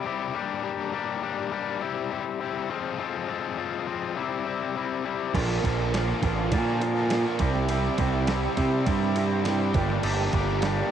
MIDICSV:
0, 0, Header, 1, 6, 480
1, 0, Start_track
1, 0, Tempo, 587084
1, 528, Time_signature, 4, 2, 24, 8
1, 8922, End_track
2, 0, Start_track
2, 0, Title_t, "Analog synth pad"
2, 0, Program_c, 0, 89
2, 4378, Note_on_c, 0, 65, 75
2, 4380, Note_on_c, 0, 81, 89
2, 4381, Note_on_c, 0, 74, 66
2, 4382, Note_on_c, 0, 70, 71
2, 6037, Note_off_c, 0, 65, 0
2, 6038, Note_off_c, 0, 81, 0
2, 6039, Note_off_c, 0, 70, 0
2, 6050, Note_on_c, 0, 76, 74
2, 6053, Note_on_c, 0, 67, 81
2, 6055, Note_on_c, 0, 84, 84
2, 7949, Note_off_c, 0, 76, 0
2, 7952, Note_off_c, 0, 84, 0
2, 7975, Note_on_c, 0, 77, 77
2, 7976, Note_on_c, 0, 82, 90
2, 8922, Note_off_c, 0, 67, 0
2, 8922, Note_off_c, 0, 74, 0
2, 8922, Note_off_c, 0, 77, 0
2, 8922, Note_off_c, 0, 82, 0
2, 8922, End_track
3, 0, Start_track
3, 0, Title_t, "Overdriven electric guitar"
3, 0, Program_c, 1, 29
3, 4381, Note_on_c, 1, 62, 116
3, 4381, Note_on_c, 1, 70, 108
3, 4610, Note_off_c, 1, 70, 0
3, 4612, Note_off_c, 1, 62, 0
3, 4615, Note_on_c, 1, 62, 100
3, 4620, Note_on_c, 1, 70, 89
3, 4854, Note_off_c, 1, 70, 0
3, 4858, Note_off_c, 1, 62, 0
3, 4861, Note_on_c, 1, 62, 96
3, 4864, Note_on_c, 1, 70, 92
3, 5093, Note_off_c, 1, 70, 0
3, 5097, Note_off_c, 1, 62, 0
3, 5100, Note_on_c, 1, 62, 96
3, 5103, Note_on_c, 1, 70, 96
3, 5330, Note_off_c, 1, 70, 0
3, 5334, Note_off_c, 1, 62, 0
3, 5338, Note_on_c, 1, 62, 101
3, 5340, Note_on_c, 1, 70, 105
3, 5574, Note_off_c, 1, 70, 0
3, 5577, Note_off_c, 1, 62, 0
3, 5580, Note_on_c, 1, 62, 98
3, 5584, Note_on_c, 1, 70, 88
3, 5817, Note_off_c, 1, 70, 0
3, 5824, Note_off_c, 1, 62, 0
3, 5827, Note_on_c, 1, 62, 100
3, 5827, Note_on_c, 1, 70, 92
3, 6044, Note_off_c, 1, 70, 0
3, 6058, Note_off_c, 1, 62, 0
3, 6067, Note_on_c, 1, 67, 109
3, 6306, Note_off_c, 1, 67, 0
3, 6309, Note_on_c, 1, 67, 118
3, 6538, Note_off_c, 1, 67, 0
3, 6541, Note_on_c, 1, 67, 93
3, 6780, Note_off_c, 1, 67, 0
3, 6783, Note_on_c, 1, 67, 89
3, 7018, Note_off_c, 1, 67, 0
3, 7022, Note_on_c, 1, 67, 96
3, 7262, Note_off_c, 1, 67, 0
3, 7265, Note_on_c, 1, 67, 115
3, 7500, Note_off_c, 1, 67, 0
3, 7503, Note_on_c, 1, 67, 102
3, 7735, Note_off_c, 1, 67, 0
3, 7739, Note_on_c, 1, 67, 97
3, 7961, Note_on_c, 1, 43, 99
3, 7967, Note_on_c, 1, 50, 100
3, 7975, Note_off_c, 1, 67, 0
3, 8190, Note_off_c, 1, 43, 0
3, 8195, Note_off_c, 1, 50, 0
3, 8200, Note_on_c, 1, 43, 110
3, 8205, Note_on_c, 1, 50, 107
3, 8429, Note_off_c, 1, 43, 0
3, 8434, Note_off_c, 1, 50, 0
3, 8439, Note_on_c, 1, 43, 84
3, 8444, Note_on_c, 1, 50, 87
3, 8664, Note_off_c, 1, 43, 0
3, 8667, Note_off_c, 1, 50, 0
3, 8674, Note_on_c, 1, 43, 85
3, 8677, Note_on_c, 1, 50, 93
3, 8906, Note_off_c, 1, 43, 0
3, 8913, Note_off_c, 1, 50, 0
3, 8922, End_track
4, 0, Start_track
4, 0, Title_t, "Overdriven electric guitar"
4, 0, Program_c, 2, 29
4, 45, Note_on_c, 2, 48, 89
4, 49, Note_on_c, 2, 55, 94
4, 49, Note_on_c, 2, 60, 99
4, 55, Note_on_c, 2, 64, 108
4, 56, Note_on_c, 2, 67, 98
4, 272, Note_off_c, 2, 48, 0
4, 274, Note_off_c, 2, 60, 0
4, 277, Note_off_c, 2, 64, 0
4, 284, Note_off_c, 2, 55, 0
4, 284, Note_on_c, 2, 55, 105
4, 289, Note_on_c, 2, 58, 103
4, 290, Note_on_c, 2, 62, 109
4, 296, Note_off_c, 2, 67, 0
4, 296, Note_on_c, 2, 67, 116
4, 518, Note_off_c, 2, 58, 0
4, 519, Note_off_c, 2, 55, 0
4, 519, Note_off_c, 2, 62, 0
4, 523, Note_on_c, 2, 55, 92
4, 527, Note_on_c, 2, 58, 111
4, 529, Note_on_c, 2, 62, 108
4, 530, Note_off_c, 2, 67, 0
4, 533, Note_on_c, 2, 67, 108
4, 757, Note_off_c, 2, 58, 0
4, 759, Note_off_c, 2, 55, 0
4, 762, Note_off_c, 2, 62, 0
4, 762, Note_on_c, 2, 55, 76
4, 767, Note_on_c, 2, 58, 86
4, 769, Note_off_c, 2, 67, 0
4, 771, Note_on_c, 2, 62, 80
4, 772, Note_on_c, 2, 67, 95
4, 999, Note_off_c, 2, 58, 0
4, 1000, Note_off_c, 2, 55, 0
4, 1000, Note_off_c, 2, 62, 0
4, 1004, Note_on_c, 2, 55, 89
4, 1009, Note_on_c, 2, 58, 94
4, 1010, Note_off_c, 2, 67, 0
4, 1010, Note_on_c, 2, 62, 99
4, 1014, Note_on_c, 2, 67, 104
4, 1236, Note_off_c, 2, 58, 0
4, 1238, Note_off_c, 2, 62, 0
4, 1239, Note_off_c, 2, 55, 0
4, 1242, Note_on_c, 2, 55, 99
4, 1246, Note_on_c, 2, 58, 94
4, 1248, Note_off_c, 2, 67, 0
4, 1248, Note_on_c, 2, 62, 87
4, 1252, Note_on_c, 2, 67, 100
4, 1473, Note_off_c, 2, 58, 0
4, 1474, Note_off_c, 2, 62, 0
4, 1476, Note_off_c, 2, 55, 0
4, 1480, Note_on_c, 2, 55, 104
4, 1485, Note_on_c, 2, 60, 98
4, 1489, Note_off_c, 2, 67, 0
4, 1489, Note_on_c, 2, 64, 108
4, 1492, Note_on_c, 2, 67, 105
4, 1715, Note_off_c, 2, 55, 0
4, 1719, Note_off_c, 2, 60, 0
4, 1722, Note_off_c, 2, 64, 0
4, 1725, Note_off_c, 2, 67, 0
4, 1725, Note_on_c, 2, 55, 95
4, 1729, Note_on_c, 2, 60, 95
4, 1732, Note_on_c, 2, 64, 92
4, 1735, Note_on_c, 2, 67, 106
4, 1952, Note_off_c, 2, 55, 0
4, 1953, Note_off_c, 2, 60, 0
4, 1959, Note_off_c, 2, 64, 0
4, 1961, Note_off_c, 2, 67, 0
4, 1962, Note_on_c, 2, 55, 90
4, 1963, Note_on_c, 2, 60, 88
4, 1969, Note_on_c, 2, 64, 103
4, 1971, Note_on_c, 2, 67, 110
4, 2191, Note_off_c, 2, 55, 0
4, 2191, Note_off_c, 2, 60, 0
4, 2194, Note_off_c, 2, 64, 0
4, 2195, Note_off_c, 2, 67, 0
4, 2204, Note_on_c, 2, 53, 91
4, 2210, Note_on_c, 2, 56, 99
4, 2211, Note_on_c, 2, 60, 116
4, 2213, Note_on_c, 2, 65, 107
4, 2435, Note_off_c, 2, 53, 0
4, 2439, Note_off_c, 2, 56, 0
4, 2442, Note_off_c, 2, 60, 0
4, 2443, Note_off_c, 2, 65, 0
4, 2445, Note_on_c, 2, 53, 94
4, 2448, Note_on_c, 2, 56, 99
4, 2451, Note_on_c, 2, 60, 105
4, 2453, Note_on_c, 2, 65, 108
4, 2673, Note_off_c, 2, 53, 0
4, 2677, Note_off_c, 2, 56, 0
4, 2681, Note_off_c, 2, 60, 0
4, 2681, Note_off_c, 2, 65, 0
4, 2683, Note_on_c, 2, 53, 68
4, 2687, Note_on_c, 2, 56, 87
4, 2691, Note_on_c, 2, 60, 83
4, 2691, Note_on_c, 2, 65, 88
4, 2917, Note_off_c, 2, 53, 0
4, 2920, Note_off_c, 2, 56, 0
4, 2922, Note_off_c, 2, 60, 0
4, 2922, Note_off_c, 2, 65, 0
4, 2927, Note_on_c, 2, 53, 93
4, 2930, Note_on_c, 2, 56, 92
4, 2932, Note_on_c, 2, 60, 91
4, 2932, Note_on_c, 2, 65, 104
4, 3152, Note_off_c, 2, 53, 0
4, 3157, Note_off_c, 2, 56, 0
4, 3158, Note_off_c, 2, 60, 0
4, 3161, Note_on_c, 2, 53, 83
4, 3163, Note_off_c, 2, 65, 0
4, 3167, Note_on_c, 2, 56, 82
4, 3168, Note_on_c, 2, 60, 92
4, 3173, Note_on_c, 2, 65, 91
4, 3391, Note_off_c, 2, 53, 0
4, 3394, Note_off_c, 2, 56, 0
4, 3394, Note_off_c, 2, 60, 0
4, 3397, Note_off_c, 2, 65, 0
4, 3404, Note_on_c, 2, 48, 103
4, 3407, Note_on_c, 2, 55, 96
4, 3410, Note_on_c, 2, 60, 100
4, 3412, Note_on_c, 2, 64, 110
4, 3636, Note_off_c, 2, 48, 0
4, 3636, Note_off_c, 2, 55, 0
4, 3644, Note_off_c, 2, 60, 0
4, 3645, Note_off_c, 2, 64, 0
4, 3646, Note_on_c, 2, 48, 88
4, 3646, Note_on_c, 2, 55, 92
4, 3654, Note_on_c, 2, 60, 91
4, 3655, Note_on_c, 2, 64, 94
4, 3880, Note_off_c, 2, 48, 0
4, 3884, Note_off_c, 2, 55, 0
4, 3887, Note_off_c, 2, 60, 0
4, 3890, Note_off_c, 2, 64, 0
4, 3890, Note_on_c, 2, 48, 91
4, 3893, Note_on_c, 2, 55, 86
4, 3897, Note_on_c, 2, 60, 99
4, 3900, Note_on_c, 2, 64, 100
4, 4115, Note_off_c, 2, 48, 0
4, 4121, Note_off_c, 2, 55, 0
4, 4123, Note_off_c, 2, 60, 0
4, 4124, Note_on_c, 2, 48, 94
4, 4125, Note_off_c, 2, 64, 0
4, 4131, Note_on_c, 2, 55, 92
4, 4133, Note_on_c, 2, 60, 91
4, 4135, Note_on_c, 2, 64, 104
4, 4353, Note_off_c, 2, 48, 0
4, 4356, Note_off_c, 2, 55, 0
4, 4357, Note_off_c, 2, 60, 0
4, 4358, Note_off_c, 2, 64, 0
4, 4366, Note_on_c, 2, 46, 101
4, 4371, Note_on_c, 2, 50, 102
4, 4374, Note_on_c, 2, 53, 100
4, 4377, Note_on_c, 2, 58, 101
4, 4377, Note_on_c, 2, 65, 100
4, 4601, Note_off_c, 2, 46, 0
4, 4602, Note_off_c, 2, 50, 0
4, 4606, Note_off_c, 2, 53, 0
4, 4608, Note_off_c, 2, 58, 0
4, 4610, Note_on_c, 2, 46, 87
4, 4612, Note_on_c, 2, 50, 85
4, 4613, Note_off_c, 2, 65, 0
4, 4616, Note_on_c, 2, 53, 79
4, 4617, Note_on_c, 2, 58, 89
4, 4623, Note_on_c, 2, 65, 89
4, 4844, Note_off_c, 2, 46, 0
4, 4848, Note_off_c, 2, 50, 0
4, 4850, Note_off_c, 2, 53, 0
4, 4853, Note_off_c, 2, 58, 0
4, 4853, Note_on_c, 2, 46, 97
4, 4856, Note_off_c, 2, 65, 0
4, 4857, Note_on_c, 2, 50, 88
4, 4859, Note_on_c, 2, 53, 91
4, 4863, Note_on_c, 2, 58, 103
4, 4866, Note_on_c, 2, 65, 108
4, 5087, Note_off_c, 2, 46, 0
4, 5092, Note_off_c, 2, 50, 0
4, 5092, Note_off_c, 2, 53, 0
4, 5097, Note_on_c, 2, 46, 86
4, 5098, Note_off_c, 2, 58, 0
4, 5099, Note_off_c, 2, 65, 0
4, 5101, Note_on_c, 2, 50, 82
4, 5102, Note_on_c, 2, 53, 86
4, 5107, Note_on_c, 2, 58, 91
4, 5109, Note_on_c, 2, 65, 98
4, 5319, Note_off_c, 2, 46, 0
4, 5322, Note_off_c, 2, 50, 0
4, 5325, Note_off_c, 2, 53, 0
4, 5329, Note_off_c, 2, 58, 0
4, 5329, Note_on_c, 2, 46, 100
4, 5332, Note_off_c, 2, 65, 0
4, 5332, Note_on_c, 2, 50, 89
4, 5335, Note_on_c, 2, 53, 107
4, 5339, Note_on_c, 2, 58, 108
4, 5342, Note_on_c, 2, 65, 101
4, 5555, Note_off_c, 2, 46, 0
4, 5562, Note_off_c, 2, 50, 0
4, 5565, Note_off_c, 2, 53, 0
4, 5565, Note_on_c, 2, 46, 92
4, 5567, Note_off_c, 2, 58, 0
4, 5570, Note_off_c, 2, 65, 0
4, 5572, Note_on_c, 2, 50, 99
4, 5574, Note_on_c, 2, 53, 101
4, 5577, Note_on_c, 2, 58, 96
4, 5580, Note_on_c, 2, 65, 97
4, 5798, Note_off_c, 2, 46, 0
4, 5805, Note_off_c, 2, 50, 0
4, 5807, Note_off_c, 2, 53, 0
4, 5808, Note_on_c, 2, 46, 88
4, 5810, Note_off_c, 2, 58, 0
4, 5810, Note_off_c, 2, 65, 0
4, 5815, Note_on_c, 2, 50, 91
4, 5817, Note_on_c, 2, 53, 91
4, 5819, Note_on_c, 2, 58, 98
4, 5820, Note_on_c, 2, 65, 99
4, 6034, Note_off_c, 2, 46, 0
4, 6038, Note_off_c, 2, 50, 0
4, 6039, Note_off_c, 2, 53, 0
4, 6040, Note_off_c, 2, 58, 0
4, 6041, Note_off_c, 2, 65, 0
4, 6050, Note_on_c, 2, 48, 94
4, 6055, Note_on_c, 2, 55, 110
4, 6057, Note_on_c, 2, 60, 116
4, 6059, Note_on_c, 2, 64, 109
4, 6276, Note_off_c, 2, 48, 0
4, 6286, Note_off_c, 2, 60, 0
4, 6286, Note_off_c, 2, 64, 0
4, 6286, Note_on_c, 2, 48, 94
4, 6289, Note_off_c, 2, 55, 0
4, 6292, Note_on_c, 2, 55, 108
4, 6296, Note_on_c, 2, 60, 110
4, 6296, Note_on_c, 2, 64, 106
4, 6513, Note_off_c, 2, 48, 0
4, 6520, Note_off_c, 2, 60, 0
4, 6521, Note_off_c, 2, 64, 0
4, 6522, Note_off_c, 2, 55, 0
4, 6523, Note_on_c, 2, 48, 78
4, 6526, Note_on_c, 2, 55, 92
4, 6530, Note_on_c, 2, 60, 88
4, 6531, Note_on_c, 2, 64, 78
4, 6751, Note_off_c, 2, 48, 0
4, 6757, Note_off_c, 2, 60, 0
4, 6759, Note_off_c, 2, 64, 0
4, 6761, Note_off_c, 2, 55, 0
4, 6761, Note_on_c, 2, 48, 88
4, 6765, Note_on_c, 2, 55, 96
4, 6767, Note_on_c, 2, 60, 89
4, 6768, Note_on_c, 2, 64, 100
4, 6992, Note_off_c, 2, 48, 0
4, 6999, Note_off_c, 2, 60, 0
4, 7002, Note_on_c, 2, 48, 93
4, 7003, Note_off_c, 2, 55, 0
4, 7005, Note_off_c, 2, 64, 0
4, 7006, Note_on_c, 2, 55, 85
4, 7008, Note_on_c, 2, 60, 101
4, 7015, Note_on_c, 2, 64, 90
4, 7230, Note_off_c, 2, 48, 0
4, 7236, Note_off_c, 2, 60, 0
4, 7240, Note_off_c, 2, 55, 0
4, 7240, Note_off_c, 2, 64, 0
4, 7240, Note_on_c, 2, 48, 92
4, 7243, Note_on_c, 2, 55, 100
4, 7246, Note_on_c, 2, 60, 111
4, 7250, Note_on_c, 2, 64, 107
4, 7472, Note_off_c, 2, 48, 0
4, 7479, Note_off_c, 2, 60, 0
4, 7481, Note_off_c, 2, 64, 0
4, 7482, Note_on_c, 2, 48, 90
4, 7483, Note_off_c, 2, 55, 0
4, 7486, Note_on_c, 2, 55, 91
4, 7489, Note_on_c, 2, 60, 91
4, 7491, Note_on_c, 2, 64, 102
4, 7716, Note_off_c, 2, 48, 0
4, 7722, Note_off_c, 2, 60, 0
4, 7726, Note_off_c, 2, 55, 0
4, 7726, Note_on_c, 2, 48, 94
4, 7727, Note_off_c, 2, 64, 0
4, 7729, Note_on_c, 2, 55, 98
4, 7732, Note_on_c, 2, 60, 109
4, 7737, Note_on_c, 2, 64, 100
4, 7953, Note_off_c, 2, 48, 0
4, 7955, Note_off_c, 2, 60, 0
4, 7958, Note_off_c, 2, 64, 0
4, 7969, Note_off_c, 2, 55, 0
4, 7969, Note_on_c, 2, 55, 102
4, 7972, Note_on_c, 2, 58, 103
4, 7975, Note_on_c, 2, 62, 102
4, 7979, Note_on_c, 2, 67, 103
4, 8201, Note_off_c, 2, 58, 0
4, 8203, Note_off_c, 2, 55, 0
4, 8204, Note_off_c, 2, 62, 0
4, 8206, Note_on_c, 2, 55, 100
4, 8211, Note_on_c, 2, 58, 106
4, 8214, Note_off_c, 2, 67, 0
4, 8214, Note_on_c, 2, 62, 105
4, 8217, Note_on_c, 2, 67, 109
4, 8445, Note_off_c, 2, 58, 0
4, 8448, Note_off_c, 2, 55, 0
4, 8448, Note_off_c, 2, 62, 0
4, 8452, Note_on_c, 2, 55, 81
4, 8454, Note_on_c, 2, 58, 88
4, 8457, Note_off_c, 2, 67, 0
4, 8458, Note_on_c, 2, 62, 90
4, 8460, Note_on_c, 2, 67, 87
4, 8685, Note_off_c, 2, 58, 0
4, 8689, Note_off_c, 2, 55, 0
4, 8689, Note_off_c, 2, 62, 0
4, 8692, Note_on_c, 2, 55, 89
4, 8695, Note_off_c, 2, 67, 0
4, 8695, Note_on_c, 2, 58, 88
4, 8698, Note_on_c, 2, 67, 107
4, 8699, Note_on_c, 2, 62, 104
4, 8922, Note_off_c, 2, 55, 0
4, 8922, Note_off_c, 2, 58, 0
4, 8922, Note_off_c, 2, 62, 0
4, 8922, Note_off_c, 2, 67, 0
4, 8922, End_track
5, 0, Start_track
5, 0, Title_t, "Picked electric bass"
5, 0, Program_c, 3, 34
5, 4369, Note_on_c, 3, 34, 112
5, 4567, Note_off_c, 3, 34, 0
5, 4610, Note_on_c, 3, 34, 101
5, 5005, Note_off_c, 3, 34, 0
5, 5088, Note_on_c, 3, 33, 93
5, 5327, Note_on_c, 3, 46, 101
5, 5339, Note_off_c, 3, 33, 0
5, 5920, Note_off_c, 3, 46, 0
5, 6046, Note_on_c, 3, 36, 96
5, 6442, Note_off_c, 3, 36, 0
5, 6526, Note_on_c, 3, 36, 91
5, 6922, Note_off_c, 3, 36, 0
5, 7007, Note_on_c, 3, 48, 95
5, 7247, Note_off_c, 3, 48, 0
5, 7247, Note_on_c, 3, 43, 94
5, 7964, Note_on_c, 3, 31, 94
5, 7976, Note_off_c, 3, 43, 0
5, 8163, Note_off_c, 3, 31, 0
5, 8201, Note_on_c, 3, 31, 117
5, 8401, Note_off_c, 3, 31, 0
5, 8448, Note_on_c, 3, 31, 101
5, 8841, Note_off_c, 3, 31, 0
5, 8922, End_track
6, 0, Start_track
6, 0, Title_t, "Drums"
6, 4371, Note_on_c, 9, 36, 111
6, 4374, Note_on_c, 9, 49, 106
6, 4453, Note_off_c, 9, 36, 0
6, 4456, Note_off_c, 9, 49, 0
6, 4613, Note_on_c, 9, 36, 80
6, 4617, Note_on_c, 9, 51, 76
6, 4694, Note_off_c, 9, 36, 0
6, 4699, Note_off_c, 9, 51, 0
6, 4857, Note_on_c, 9, 51, 105
6, 4864, Note_on_c, 9, 38, 109
6, 4939, Note_off_c, 9, 51, 0
6, 4946, Note_off_c, 9, 38, 0
6, 5090, Note_on_c, 9, 51, 74
6, 5091, Note_on_c, 9, 36, 81
6, 5172, Note_off_c, 9, 51, 0
6, 5173, Note_off_c, 9, 36, 0
6, 5327, Note_on_c, 9, 51, 112
6, 5331, Note_on_c, 9, 36, 115
6, 5409, Note_off_c, 9, 51, 0
6, 5412, Note_off_c, 9, 36, 0
6, 5570, Note_on_c, 9, 51, 82
6, 5652, Note_off_c, 9, 51, 0
6, 5806, Note_on_c, 9, 51, 117
6, 5812, Note_on_c, 9, 38, 119
6, 5887, Note_off_c, 9, 51, 0
6, 5894, Note_off_c, 9, 38, 0
6, 6041, Note_on_c, 9, 51, 88
6, 6047, Note_on_c, 9, 36, 112
6, 6123, Note_off_c, 9, 51, 0
6, 6129, Note_off_c, 9, 36, 0
6, 6175, Note_on_c, 9, 38, 35
6, 6257, Note_off_c, 9, 38, 0
6, 6283, Note_on_c, 9, 51, 112
6, 6365, Note_off_c, 9, 51, 0
6, 6523, Note_on_c, 9, 51, 83
6, 6527, Note_on_c, 9, 36, 84
6, 6605, Note_off_c, 9, 51, 0
6, 6609, Note_off_c, 9, 36, 0
6, 6763, Note_on_c, 9, 51, 111
6, 6770, Note_on_c, 9, 38, 111
6, 6845, Note_off_c, 9, 51, 0
6, 6851, Note_off_c, 9, 38, 0
6, 7006, Note_on_c, 9, 51, 78
6, 7008, Note_on_c, 9, 36, 79
6, 7087, Note_off_c, 9, 51, 0
6, 7090, Note_off_c, 9, 36, 0
6, 7247, Note_on_c, 9, 51, 117
6, 7248, Note_on_c, 9, 36, 127
6, 7329, Note_off_c, 9, 51, 0
6, 7330, Note_off_c, 9, 36, 0
6, 7487, Note_on_c, 9, 51, 79
6, 7569, Note_off_c, 9, 51, 0
6, 7729, Note_on_c, 9, 51, 107
6, 7735, Note_on_c, 9, 38, 117
6, 7810, Note_off_c, 9, 51, 0
6, 7817, Note_off_c, 9, 38, 0
6, 7967, Note_on_c, 9, 51, 74
6, 7969, Note_on_c, 9, 36, 107
6, 8049, Note_off_c, 9, 51, 0
6, 8051, Note_off_c, 9, 36, 0
6, 8096, Note_on_c, 9, 38, 35
6, 8177, Note_off_c, 9, 38, 0
6, 8203, Note_on_c, 9, 49, 106
6, 8285, Note_off_c, 9, 49, 0
6, 8444, Note_on_c, 9, 51, 78
6, 8447, Note_on_c, 9, 36, 82
6, 8526, Note_off_c, 9, 51, 0
6, 8529, Note_off_c, 9, 36, 0
6, 8683, Note_on_c, 9, 51, 96
6, 8689, Note_on_c, 9, 38, 117
6, 8764, Note_off_c, 9, 51, 0
6, 8771, Note_off_c, 9, 38, 0
6, 8922, End_track
0, 0, End_of_file